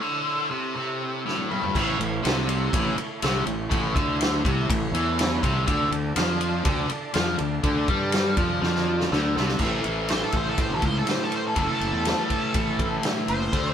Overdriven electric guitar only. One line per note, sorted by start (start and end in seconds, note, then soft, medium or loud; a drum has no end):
0.01 0.50 D3 loud
0.50 0.74 C3 medium
0.76 1.24 C3 loud
1.26 1.49 A2 medium
1.51 1.74 G2 loud
1.75 1.98 A2 loud
1.99 2.19 A2 medium
2.23 2.72 C3 loud
2.74 2.96 A2 loud
2.98 muted overdriven electric guitar stroke medium
3.23 3.46 C3 loud
3.46 3.66 A2 medium
3.70 3.95 A2 loud
3.95 4.44 D3 loud
4.45 4.68 C3 loud
4.70 4.89 A2 medium
4.94 5.42 E3 medium
5.43 5.67 C3 loud
5.67 5.90 D3 loud
5.92 6.11 D3 medium
6.16 6.65 F3 loud
6.65 6.89 D3 loud
6.91 muted overdriven electric guitar stroke medium
7.14 7.38 F3 loud
7.38 7.58 D3 medium
7.63 7.87 D3 loud
7.89 8.37 G3 medium
8.37 8.61 F3 loud
8.62 9.11 F3 loud
9.12 9.36 D3 loud
9.37 9.60 C3 loud
9.60 11.54 A2 medium
9.60 11.55 E3 medium
9.60 11.57 A3 medium
11.55 13.51 A2 loud
11.55 13.52 E3 medium
11.55 13.54 A3 loud
13.53 13.74 D3 medium
13.53 13.74 A3 medium
13.53 13.74 D4 loud